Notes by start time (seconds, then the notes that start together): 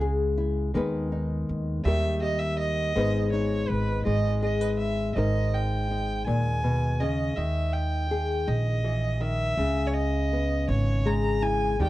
Already playing: C#2 C#3 G#3 E4
0.01 G#4
0.38 E4
0.74 D#2 D#3 G#3 B3 D#4 B4
1.12 D#4
1.49 D#2
1.84 D#2 D#3 G3 G4 A#4 E5
2.22 G4 D#5
2.39 E5
2.59 D#5
2.96 G#1 G#2 G#3 B3 D#4 B4
3.32 D#4 C#5
3.69 G#1 B4
4.05 G#1 G#3 D#5
4.42 G#4 D#5
4.61 B4
4.79 E5
5.15 G#1 G#2 G#3 D#4 A#4 D#5
5.54 G5
5.91 D#4
6.26 D#2 A#2 G#5
6.64 B2
7.00 C#3 D#5
7.36 D#2 D#3 E5
7.73 G5
8.11 G#4
8.47 A#1 D#5
8.84 E3
9.20 D#3 E5
9.57 C#2 C#3
9.87 C#5
9.94 D#5
10.33 B3
10.68 G#1 C#5
11.05 G#3 A#5
11.42 E4 G#5
11.79 D#2 D#3 G3 D#4 G4 G5